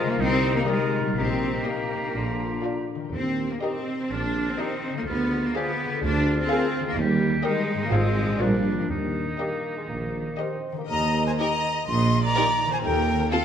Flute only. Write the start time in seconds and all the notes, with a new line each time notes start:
Already playing: A#5
0.20 A#5
1.17 A#5
1.66 A#5
2.14 A#5
3.63 A#5
4.60 A#5
5.56 G#5
6.51 G#5
7.45 G5
7.93 F5
8.41 D5
9.40 D#5
10.39 D#5
10.90 A#5
11.27 G#5
11.39 A#5
11.87 C6
12.24 A#5
12.73 G#5
12.84 G5
13.31 F5